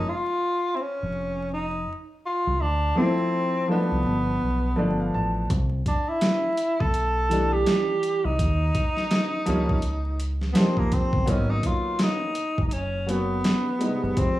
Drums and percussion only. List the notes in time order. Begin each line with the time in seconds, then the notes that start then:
5.50 kick, closed hi-hat
5.86 kick, closed hi-hat
6.21 snare, closed hi-hat
6.57 closed hi-hat
6.80 kick
6.94 closed hi-hat
7.31 closed hi-hat
7.66 snare, closed hi-hat
8.03 closed hi-hat
8.39 kick, closed hi-hat
8.75 kick, closed hi-hat
8.97 snare
9.11 snare, closed hi-hat
9.46 closed hi-hat
9.69 kick
9.82 closed hi-hat
10.20 closed hi-hat
10.41 snare
10.55 snare, closed hi-hat
10.77 kick
10.92 kick, closed hi-hat
11.13 kick
11.27 kick, closed hi-hat
11.63 kick, closed hi-hat
11.99 snare, closed hi-hat
12.35 closed hi-hat
12.58 kick
12.71 closed hi-hat
13.09 closed hi-hat
13.44 snare, closed hi-hat
13.81 closed hi-hat
14.17 kick, closed hi-hat